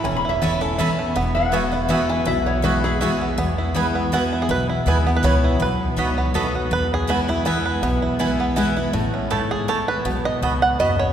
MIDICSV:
0, 0, Header, 1, 6, 480
1, 0, Start_track
1, 0, Key_signature, 4, "major"
1, 0, Tempo, 370828
1, 60, Time_signature, 3, 2, 24, 8
1, 14404, End_track
2, 0, Start_track
2, 0, Title_t, "Resonator guitar played with a steel bar"
2, 0, Program_c, 0, 25
2, 52, Note_on_c, 0, 80, 107
2, 211, Note_off_c, 0, 80, 0
2, 212, Note_on_c, 0, 83, 96
2, 371, Note_off_c, 0, 83, 0
2, 376, Note_on_c, 0, 76, 116
2, 1308, Note_off_c, 0, 76, 0
2, 1744, Note_on_c, 0, 78, 114
2, 2468, Note_off_c, 0, 78, 0
2, 2468, Note_on_c, 0, 76, 114
2, 2681, Note_off_c, 0, 76, 0
2, 2710, Note_on_c, 0, 80, 106
2, 2927, Note_off_c, 0, 80, 0
2, 2940, Note_on_c, 0, 76, 125
2, 3186, Note_on_c, 0, 73, 96
2, 3190, Note_off_c, 0, 76, 0
2, 3405, Note_off_c, 0, 73, 0
2, 3414, Note_on_c, 0, 71, 105
2, 3667, Note_off_c, 0, 71, 0
2, 3674, Note_on_c, 0, 68, 106
2, 4355, Note_off_c, 0, 68, 0
2, 14404, End_track
3, 0, Start_track
3, 0, Title_t, "Mandolin"
3, 0, Program_c, 1, 25
3, 540, Note_on_c, 1, 61, 78
3, 546, Note_on_c, 1, 69, 90
3, 550, Note_on_c, 1, 76, 95
3, 553, Note_on_c, 1, 83, 91
3, 665, Note_off_c, 1, 61, 0
3, 668, Note_off_c, 1, 69, 0
3, 670, Note_off_c, 1, 76, 0
3, 671, Note_off_c, 1, 83, 0
3, 1022, Note_on_c, 1, 61, 84
3, 1024, Note_on_c, 1, 69, 90
3, 1032, Note_on_c, 1, 76, 87
3, 1034, Note_on_c, 1, 83, 102
3, 1145, Note_off_c, 1, 61, 0
3, 1146, Note_off_c, 1, 69, 0
3, 1150, Note_off_c, 1, 76, 0
3, 1152, Note_off_c, 1, 83, 0
3, 1973, Note_on_c, 1, 59, 93
3, 1981, Note_on_c, 1, 66, 91
3, 1984, Note_on_c, 1, 76, 100
3, 1987, Note_on_c, 1, 80, 97
3, 2101, Note_off_c, 1, 59, 0
3, 2105, Note_off_c, 1, 66, 0
3, 2106, Note_off_c, 1, 76, 0
3, 2108, Note_off_c, 1, 80, 0
3, 2456, Note_on_c, 1, 59, 100
3, 2463, Note_on_c, 1, 66, 90
3, 2466, Note_on_c, 1, 76, 90
3, 2469, Note_on_c, 1, 80, 88
3, 2582, Note_off_c, 1, 59, 0
3, 2585, Note_off_c, 1, 66, 0
3, 2587, Note_off_c, 1, 76, 0
3, 2589, Note_off_c, 1, 80, 0
3, 3417, Note_on_c, 1, 59, 77
3, 3420, Note_on_c, 1, 66, 90
3, 3424, Note_on_c, 1, 76, 85
3, 3428, Note_on_c, 1, 80, 104
3, 3542, Note_off_c, 1, 59, 0
3, 3544, Note_off_c, 1, 66, 0
3, 3546, Note_off_c, 1, 76, 0
3, 3548, Note_off_c, 1, 80, 0
3, 3890, Note_on_c, 1, 59, 87
3, 3898, Note_on_c, 1, 66, 89
3, 3901, Note_on_c, 1, 76, 98
3, 3905, Note_on_c, 1, 80, 95
3, 4019, Note_off_c, 1, 59, 0
3, 4023, Note_off_c, 1, 66, 0
3, 4024, Note_off_c, 1, 76, 0
3, 4026, Note_off_c, 1, 80, 0
3, 4855, Note_on_c, 1, 59, 79
3, 4863, Note_on_c, 1, 64, 76
3, 4865, Note_on_c, 1, 71, 91
3, 4870, Note_on_c, 1, 80, 94
3, 4981, Note_off_c, 1, 59, 0
3, 4985, Note_off_c, 1, 64, 0
3, 4986, Note_off_c, 1, 71, 0
3, 4988, Note_off_c, 1, 80, 0
3, 5342, Note_on_c, 1, 59, 88
3, 5346, Note_on_c, 1, 64, 89
3, 5352, Note_on_c, 1, 71, 97
3, 5354, Note_on_c, 1, 80, 106
3, 5465, Note_off_c, 1, 59, 0
3, 5467, Note_off_c, 1, 64, 0
3, 5470, Note_off_c, 1, 71, 0
3, 5471, Note_off_c, 1, 80, 0
3, 6299, Note_on_c, 1, 59, 82
3, 6306, Note_on_c, 1, 64, 82
3, 6309, Note_on_c, 1, 71, 90
3, 6313, Note_on_c, 1, 80, 90
3, 6423, Note_off_c, 1, 59, 0
3, 6427, Note_off_c, 1, 64, 0
3, 6428, Note_off_c, 1, 71, 0
3, 6430, Note_off_c, 1, 80, 0
3, 6779, Note_on_c, 1, 59, 79
3, 6785, Note_on_c, 1, 64, 89
3, 6787, Note_on_c, 1, 71, 99
3, 6793, Note_on_c, 1, 80, 82
3, 6903, Note_off_c, 1, 59, 0
3, 6906, Note_off_c, 1, 64, 0
3, 6907, Note_off_c, 1, 71, 0
3, 6910, Note_off_c, 1, 80, 0
3, 7737, Note_on_c, 1, 59, 82
3, 7740, Note_on_c, 1, 66, 84
3, 7745, Note_on_c, 1, 75, 96
3, 7749, Note_on_c, 1, 83, 90
3, 7862, Note_off_c, 1, 59, 0
3, 7864, Note_off_c, 1, 66, 0
3, 7866, Note_off_c, 1, 75, 0
3, 7869, Note_off_c, 1, 83, 0
3, 8212, Note_on_c, 1, 59, 91
3, 8216, Note_on_c, 1, 66, 95
3, 8223, Note_on_c, 1, 75, 94
3, 8225, Note_on_c, 1, 83, 86
3, 8340, Note_off_c, 1, 59, 0
3, 8342, Note_off_c, 1, 66, 0
3, 8345, Note_off_c, 1, 75, 0
3, 8346, Note_off_c, 1, 83, 0
3, 9170, Note_on_c, 1, 59, 79
3, 9174, Note_on_c, 1, 64, 87
3, 9175, Note_on_c, 1, 71, 93
3, 9182, Note_on_c, 1, 80, 94
3, 9299, Note_off_c, 1, 59, 0
3, 9301, Note_off_c, 1, 64, 0
3, 9301, Note_off_c, 1, 71, 0
3, 9305, Note_off_c, 1, 80, 0
3, 9652, Note_on_c, 1, 59, 78
3, 9659, Note_on_c, 1, 64, 88
3, 9663, Note_on_c, 1, 71, 92
3, 9665, Note_on_c, 1, 80, 94
3, 9780, Note_off_c, 1, 59, 0
3, 9783, Note_off_c, 1, 64, 0
3, 9785, Note_off_c, 1, 71, 0
3, 9786, Note_off_c, 1, 80, 0
3, 10606, Note_on_c, 1, 59, 84
3, 10611, Note_on_c, 1, 64, 84
3, 10615, Note_on_c, 1, 71, 90
3, 10620, Note_on_c, 1, 80, 102
3, 10737, Note_off_c, 1, 59, 0
3, 10739, Note_off_c, 1, 64, 0
3, 10741, Note_off_c, 1, 71, 0
3, 10744, Note_off_c, 1, 80, 0
3, 11082, Note_on_c, 1, 59, 79
3, 11085, Note_on_c, 1, 64, 94
3, 11091, Note_on_c, 1, 71, 91
3, 11094, Note_on_c, 1, 80, 93
3, 11215, Note_off_c, 1, 59, 0
3, 11216, Note_off_c, 1, 64, 0
3, 11219, Note_off_c, 1, 71, 0
3, 11221, Note_off_c, 1, 80, 0
3, 12047, Note_on_c, 1, 57, 100
3, 12050, Note_on_c, 1, 64, 88
3, 12053, Note_on_c, 1, 73, 98
3, 12058, Note_on_c, 1, 81, 87
3, 12177, Note_off_c, 1, 57, 0
3, 12178, Note_off_c, 1, 64, 0
3, 12180, Note_off_c, 1, 73, 0
3, 12183, Note_off_c, 1, 81, 0
3, 12529, Note_on_c, 1, 57, 81
3, 12534, Note_on_c, 1, 64, 83
3, 12540, Note_on_c, 1, 73, 94
3, 12545, Note_on_c, 1, 81, 94
3, 12658, Note_off_c, 1, 57, 0
3, 12661, Note_off_c, 1, 64, 0
3, 12664, Note_off_c, 1, 73, 0
3, 12666, Note_off_c, 1, 81, 0
3, 13493, Note_on_c, 1, 59, 87
3, 13496, Note_on_c, 1, 66, 92
3, 13502, Note_on_c, 1, 75, 82
3, 13508, Note_on_c, 1, 83, 100
3, 13620, Note_off_c, 1, 59, 0
3, 13622, Note_off_c, 1, 66, 0
3, 13625, Note_off_c, 1, 75, 0
3, 13628, Note_off_c, 1, 83, 0
3, 13972, Note_on_c, 1, 59, 87
3, 13979, Note_on_c, 1, 66, 89
3, 13981, Note_on_c, 1, 75, 93
3, 13984, Note_on_c, 1, 83, 103
3, 14100, Note_off_c, 1, 59, 0
3, 14103, Note_off_c, 1, 66, 0
3, 14104, Note_off_c, 1, 75, 0
3, 14106, Note_off_c, 1, 83, 0
3, 14404, End_track
4, 0, Start_track
4, 0, Title_t, "Five-string banjo"
4, 0, Program_c, 2, 105
4, 0, Note_on_c, 2, 64, 66
4, 0, Note_on_c, 2, 69, 66
4, 63, Note_on_c, 2, 61, 62
4, 269, Note_off_c, 2, 69, 0
4, 317, Note_off_c, 2, 64, 0
4, 322, Note_on_c, 2, 64, 58
4, 526, Note_off_c, 2, 61, 0
4, 541, Note_on_c, 2, 61, 66
4, 795, Note_on_c, 2, 69, 64
4, 1009, Note_off_c, 2, 64, 0
4, 1014, Note_on_c, 2, 64, 66
4, 1227, Note_off_c, 2, 61, 0
4, 1279, Note_on_c, 2, 57, 60
4, 1453, Note_off_c, 2, 69, 0
4, 1499, Note_off_c, 2, 57, 0
4, 1507, Note_on_c, 2, 59, 83
4, 1762, Note_off_c, 2, 64, 0
4, 1767, Note_on_c, 2, 64, 66
4, 1977, Note_off_c, 2, 59, 0
4, 1982, Note_on_c, 2, 59, 66
4, 2237, Note_off_c, 2, 64, 0
4, 2237, Note_on_c, 2, 64, 67
4, 2457, Note_off_c, 2, 64, 0
4, 2457, Note_on_c, 2, 64, 67
4, 2699, Note_off_c, 2, 64, 0
4, 2714, Note_on_c, 2, 64, 65
4, 2917, Note_off_c, 2, 64, 0
4, 2932, Note_on_c, 2, 64, 68
4, 3187, Note_off_c, 2, 59, 0
4, 3192, Note_on_c, 2, 59, 65
4, 3399, Note_off_c, 2, 64, 0
4, 3415, Note_on_c, 2, 64, 62
4, 3663, Note_off_c, 2, 64, 0
4, 3679, Note_on_c, 2, 64, 61
4, 3851, Note_off_c, 2, 59, 0
4, 3883, Note_off_c, 2, 64, 0
4, 3898, Note_on_c, 2, 64, 72
4, 4161, Note_on_c, 2, 59, 63
4, 4364, Note_off_c, 2, 59, 0
4, 4378, Note_off_c, 2, 64, 0
4, 4380, Note_on_c, 2, 59, 74
4, 4638, Note_on_c, 2, 64, 61
4, 4864, Note_on_c, 2, 68, 85
4, 5112, Note_off_c, 2, 59, 0
4, 5118, Note_on_c, 2, 59, 73
4, 5294, Note_off_c, 2, 64, 0
4, 5352, Note_on_c, 2, 66, 83
4, 5355, Note_off_c, 2, 68, 0
4, 5601, Note_on_c, 2, 64, 64
4, 5689, Note_off_c, 2, 66, 0
4, 5722, Note_on_c, 2, 68, 87
4, 5828, Note_off_c, 2, 68, 0
4, 5835, Note_on_c, 2, 71, 100
4, 6061, Note_off_c, 2, 64, 0
4, 6071, Note_off_c, 2, 71, 0
4, 6076, Note_on_c, 2, 64, 60
4, 6317, Note_on_c, 2, 68, 92
4, 6552, Note_off_c, 2, 59, 0
4, 6557, Note_on_c, 2, 59, 79
4, 6680, Note_off_c, 2, 64, 0
4, 6685, Note_on_c, 2, 71, 98
4, 6688, Note_off_c, 2, 68, 0
4, 6788, Note_on_c, 2, 73, 111
4, 6789, Note_off_c, 2, 71, 0
4, 7045, Note_on_c, 2, 64, 67
4, 7261, Note_off_c, 2, 64, 0
4, 7272, Note_off_c, 2, 73, 0
4, 7277, Note_on_c, 2, 71, 105
4, 7746, Note_on_c, 2, 66, 63
4, 7955, Note_off_c, 2, 71, 0
4, 7992, Note_off_c, 2, 59, 0
4, 7997, Note_on_c, 2, 59, 76
4, 8220, Note_on_c, 2, 69, 71
4, 8429, Note_off_c, 2, 66, 0
4, 8480, Note_on_c, 2, 66, 58
4, 8699, Note_off_c, 2, 66, 0
4, 8699, Note_off_c, 2, 69, 0
4, 8709, Note_on_c, 2, 71, 118
4, 8970, Note_off_c, 2, 71, 0
4, 8981, Note_on_c, 2, 68, 105
4, 9190, Note_on_c, 2, 66, 100
4, 9196, Note_off_c, 2, 68, 0
4, 9436, Note_on_c, 2, 64, 97
4, 9451, Note_off_c, 2, 66, 0
4, 9647, Note_off_c, 2, 64, 0
4, 9652, Note_on_c, 2, 68, 96
4, 9810, Note_off_c, 2, 59, 0
4, 9904, Note_off_c, 2, 68, 0
4, 9909, Note_on_c, 2, 71, 90
4, 10134, Note_on_c, 2, 59, 85
4, 10359, Note_off_c, 2, 71, 0
4, 10386, Note_on_c, 2, 64, 63
4, 10595, Note_off_c, 2, 64, 0
4, 10610, Note_on_c, 2, 64, 58
4, 10823, Note_off_c, 2, 59, 0
4, 10871, Note_on_c, 2, 59, 77
4, 11071, Note_off_c, 2, 64, 0
4, 11087, Note_on_c, 2, 64, 64
4, 11331, Note_off_c, 2, 64, 0
4, 11347, Note_on_c, 2, 64, 61
4, 11530, Note_off_c, 2, 59, 0
4, 11567, Note_on_c, 2, 57, 75
4, 11572, Note_off_c, 2, 64, 0
4, 11827, Note_on_c, 2, 61, 60
4, 12050, Note_on_c, 2, 69, 81
4, 12259, Note_off_c, 2, 57, 0
4, 12310, Note_on_c, 2, 68, 91
4, 12321, Note_off_c, 2, 69, 0
4, 12488, Note_off_c, 2, 61, 0
4, 12540, Note_on_c, 2, 69, 86
4, 12541, Note_off_c, 2, 68, 0
4, 12791, Note_on_c, 2, 71, 94
4, 12806, Note_off_c, 2, 69, 0
4, 13016, Note_on_c, 2, 59, 77
4, 13267, Note_off_c, 2, 71, 0
4, 13272, Note_on_c, 2, 75, 109
4, 13479, Note_off_c, 2, 75, 0
4, 13503, Note_on_c, 2, 66, 58
4, 13749, Note_on_c, 2, 78, 105
4, 13972, Note_off_c, 2, 78, 0
4, 13977, Note_on_c, 2, 75, 101
4, 14188, Note_off_c, 2, 66, 0
4, 14225, Note_off_c, 2, 75, 0
4, 14230, Note_on_c, 2, 73, 89
4, 14269, Note_off_c, 2, 59, 0
4, 14404, Note_off_c, 2, 73, 0
4, 14404, End_track
5, 0, Start_track
5, 0, Title_t, "Steel-string acoustic guitar"
5, 0, Program_c, 3, 25
5, 62, Note_on_c, 3, 40, 87
5, 538, Note_on_c, 3, 52, 87
5, 547, Note_on_c, 3, 59, 97
5, 554, Note_on_c, 3, 61, 89
5, 563, Note_on_c, 3, 64, 99
5, 774, Note_off_c, 3, 64, 0
5, 787, Note_off_c, 3, 52, 0
5, 789, Note_on_c, 3, 64, 60
5, 792, Note_off_c, 3, 59, 0
5, 795, Note_off_c, 3, 61, 0
5, 814, Note_on_c, 3, 61, 50
5, 976, Note_off_c, 3, 40, 0
5, 1005, Note_off_c, 3, 64, 0
5, 1015, Note_off_c, 3, 61, 0
5, 1018, Note_on_c, 3, 52, 96
5, 1026, Note_on_c, 3, 59, 99
5, 1031, Note_on_c, 3, 61, 108
5, 1044, Note_on_c, 3, 64, 109
5, 1476, Note_off_c, 3, 52, 0
5, 1480, Note_off_c, 3, 59, 0
5, 1482, Note_off_c, 3, 61, 0
5, 1489, Note_off_c, 3, 64, 0
5, 1496, Note_on_c, 3, 40, 96
5, 1964, Note_on_c, 3, 52, 87
5, 1978, Note_on_c, 3, 56, 85
5, 1984, Note_on_c, 3, 59, 92
5, 1990, Note_on_c, 3, 66, 105
5, 2206, Note_off_c, 3, 66, 0
5, 2220, Note_off_c, 3, 52, 0
5, 2221, Note_on_c, 3, 66, 57
5, 2227, Note_off_c, 3, 56, 0
5, 2230, Note_off_c, 3, 59, 0
5, 2247, Note_on_c, 3, 59, 47
5, 2413, Note_off_c, 3, 40, 0
5, 2441, Note_off_c, 3, 66, 0
5, 2441, Note_on_c, 3, 52, 104
5, 2442, Note_off_c, 3, 59, 0
5, 2447, Note_on_c, 3, 56, 97
5, 2458, Note_on_c, 3, 59, 111
5, 2462, Note_on_c, 3, 66, 104
5, 2907, Note_off_c, 3, 52, 0
5, 2910, Note_off_c, 3, 56, 0
5, 2915, Note_off_c, 3, 59, 0
5, 2918, Note_off_c, 3, 66, 0
5, 2918, Note_on_c, 3, 47, 97
5, 3396, Note_on_c, 3, 52, 85
5, 3411, Note_on_c, 3, 56, 86
5, 3413, Note_on_c, 3, 59, 89
5, 3422, Note_on_c, 3, 66, 100
5, 3656, Note_off_c, 3, 52, 0
5, 3660, Note_off_c, 3, 66, 0
5, 3663, Note_off_c, 3, 56, 0
5, 3664, Note_off_c, 3, 59, 0
5, 3675, Note_on_c, 3, 66, 61
5, 3694, Note_on_c, 3, 59, 43
5, 3843, Note_off_c, 3, 47, 0
5, 3888, Note_off_c, 3, 66, 0
5, 3893, Note_on_c, 3, 52, 100
5, 3897, Note_off_c, 3, 59, 0
5, 3908, Note_on_c, 3, 56, 102
5, 3912, Note_on_c, 3, 59, 99
5, 3921, Note_on_c, 3, 66, 114
5, 4353, Note_off_c, 3, 52, 0
5, 4360, Note_off_c, 3, 56, 0
5, 4363, Note_off_c, 3, 59, 0
5, 4367, Note_off_c, 3, 66, 0
5, 4370, Note_on_c, 3, 40, 99
5, 4847, Note_on_c, 3, 52, 93
5, 4853, Note_on_c, 3, 56, 84
5, 4865, Note_on_c, 3, 59, 87
5, 4870, Note_on_c, 3, 64, 98
5, 5289, Note_off_c, 3, 40, 0
5, 5310, Note_off_c, 3, 52, 0
5, 5313, Note_off_c, 3, 56, 0
5, 5319, Note_off_c, 3, 59, 0
5, 5321, Note_off_c, 3, 64, 0
5, 5332, Note_on_c, 3, 52, 96
5, 5341, Note_on_c, 3, 56, 91
5, 5349, Note_on_c, 3, 59, 102
5, 5359, Note_on_c, 3, 64, 103
5, 5792, Note_off_c, 3, 52, 0
5, 5797, Note_off_c, 3, 56, 0
5, 5801, Note_off_c, 3, 59, 0
5, 5806, Note_off_c, 3, 64, 0
5, 5811, Note_on_c, 3, 47, 89
5, 6288, Note_on_c, 3, 52, 92
5, 6299, Note_on_c, 3, 56, 91
5, 6312, Note_on_c, 3, 59, 86
5, 6317, Note_on_c, 3, 64, 94
5, 6541, Note_off_c, 3, 52, 0
5, 6543, Note_off_c, 3, 64, 0
5, 6547, Note_off_c, 3, 56, 0
5, 6554, Note_off_c, 3, 59, 0
5, 6559, Note_on_c, 3, 64, 51
5, 6580, Note_on_c, 3, 59, 52
5, 6730, Note_off_c, 3, 47, 0
5, 6766, Note_off_c, 3, 59, 0
5, 6767, Note_on_c, 3, 52, 93
5, 6769, Note_off_c, 3, 64, 0
5, 6776, Note_on_c, 3, 56, 97
5, 6782, Note_on_c, 3, 59, 108
5, 6790, Note_on_c, 3, 64, 101
5, 7230, Note_off_c, 3, 52, 0
5, 7234, Note_off_c, 3, 56, 0
5, 7238, Note_off_c, 3, 59, 0
5, 7241, Note_off_c, 3, 64, 0
5, 7245, Note_on_c, 3, 47, 86
5, 7721, Note_on_c, 3, 54, 78
5, 7727, Note_on_c, 3, 59, 94
5, 7737, Note_on_c, 3, 63, 89
5, 7743, Note_on_c, 3, 66, 81
5, 8167, Note_off_c, 3, 47, 0
5, 8187, Note_off_c, 3, 54, 0
5, 8190, Note_off_c, 3, 59, 0
5, 8195, Note_off_c, 3, 63, 0
5, 8198, Note_off_c, 3, 66, 0
5, 8208, Note_on_c, 3, 54, 95
5, 8219, Note_on_c, 3, 59, 106
5, 8226, Note_on_c, 3, 63, 94
5, 8234, Note_on_c, 3, 66, 95
5, 8671, Note_off_c, 3, 54, 0
5, 8676, Note_off_c, 3, 59, 0
5, 8679, Note_off_c, 3, 63, 0
5, 8683, Note_off_c, 3, 66, 0
5, 8685, Note_on_c, 3, 40, 87
5, 9157, Note_on_c, 3, 52, 88
5, 9164, Note_on_c, 3, 56, 86
5, 9174, Note_on_c, 3, 59, 90
5, 9184, Note_on_c, 3, 64, 97
5, 9411, Note_off_c, 3, 64, 0
5, 9416, Note_off_c, 3, 52, 0
5, 9420, Note_off_c, 3, 56, 0
5, 9425, Note_off_c, 3, 59, 0
5, 9427, Note_on_c, 3, 64, 61
5, 9446, Note_on_c, 3, 59, 40
5, 9607, Note_off_c, 3, 40, 0
5, 9641, Note_off_c, 3, 59, 0
5, 9644, Note_off_c, 3, 64, 0
5, 9645, Note_on_c, 3, 52, 93
5, 9654, Note_on_c, 3, 56, 101
5, 9657, Note_on_c, 3, 59, 94
5, 9669, Note_on_c, 3, 64, 101
5, 10109, Note_off_c, 3, 52, 0
5, 10113, Note_off_c, 3, 56, 0
5, 10115, Note_off_c, 3, 59, 0
5, 10121, Note_off_c, 3, 64, 0
5, 10133, Note_on_c, 3, 47, 95
5, 10602, Note_on_c, 3, 52, 82
5, 10608, Note_on_c, 3, 56, 92
5, 10613, Note_on_c, 3, 59, 88
5, 10625, Note_on_c, 3, 64, 95
5, 11051, Note_off_c, 3, 47, 0
5, 11067, Note_off_c, 3, 52, 0
5, 11070, Note_off_c, 3, 56, 0
5, 11073, Note_off_c, 3, 59, 0
5, 11079, Note_off_c, 3, 64, 0
5, 11081, Note_on_c, 3, 52, 99
5, 11090, Note_on_c, 3, 56, 107
5, 11098, Note_on_c, 3, 59, 108
5, 11106, Note_on_c, 3, 64, 103
5, 11330, Note_off_c, 3, 64, 0
5, 11338, Note_off_c, 3, 52, 0
5, 11342, Note_off_c, 3, 56, 0
5, 11345, Note_on_c, 3, 64, 63
5, 11346, Note_off_c, 3, 59, 0
5, 11369, Note_on_c, 3, 59, 55
5, 11563, Note_off_c, 3, 64, 0
5, 11564, Note_on_c, 3, 45, 93
5, 11575, Note_off_c, 3, 59, 0
5, 12043, Note_on_c, 3, 44, 85
5, 12486, Note_off_c, 3, 45, 0
5, 12508, Note_off_c, 3, 44, 0
5, 12533, Note_on_c, 3, 45, 97
5, 12993, Note_off_c, 3, 45, 0
5, 13010, Note_on_c, 3, 47, 89
5, 13493, Note_on_c, 3, 44, 88
5, 13929, Note_off_c, 3, 47, 0
5, 13953, Note_off_c, 3, 44, 0
5, 13976, Note_on_c, 3, 42, 97
5, 14404, Note_off_c, 3, 42, 0
5, 14404, End_track
6, 0, Start_track
6, 0, Title_t, "Upright bass"
6, 0, Program_c, 4, 32
6, 57, Note_on_c, 4, 28, 92
6, 1025, Note_off_c, 4, 28, 0
6, 1501, Note_on_c, 4, 28, 93
6, 2466, Note_off_c, 4, 28, 0
6, 2934, Note_on_c, 4, 35, 82
6, 3902, Note_off_c, 4, 35, 0
6, 4377, Note_on_c, 4, 40, 91
6, 5344, Note_off_c, 4, 40, 0
6, 5811, Note_on_c, 4, 35, 93
6, 6135, Note_off_c, 4, 35, 0
6, 6290, Note_on_c, 4, 39, 88
6, 6701, Note_off_c, 4, 39, 0
6, 6767, Note_on_c, 4, 37, 91
6, 7179, Note_off_c, 4, 37, 0
6, 7252, Note_on_c, 4, 35, 98
6, 7576, Note_off_c, 4, 35, 0
6, 7735, Note_on_c, 4, 37, 77
6, 8144, Note_off_c, 4, 37, 0
6, 8217, Note_on_c, 4, 39, 81
6, 8625, Note_off_c, 4, 39, 0
6, 8693, Note_on_c, 4, 40, 99
6, 9662, Note_off_c, 4, 40, 0
6, 10121, Note_on_c, 4, 35, 84
6, 11093, Note_off_c, 4, 35, 0
6, 11569, Note_on_c, 4, 33, 92
6, 12539, Note_off_c, 4, 33, 0
6, 13006, Note_on_c, 4, 35, 86
6, 13332, Note_off_c, 4, 35, 0
6, 13484, Note_on_c, 4, 37, 79
6, 13898, Note_off_c, 4, 37, 0
6, 13967, Note_on_c, 4, 39, 92
6, 14380, Note_off_c, 4, 39, 0
6, 14404, End_track
0, 0, End_of_file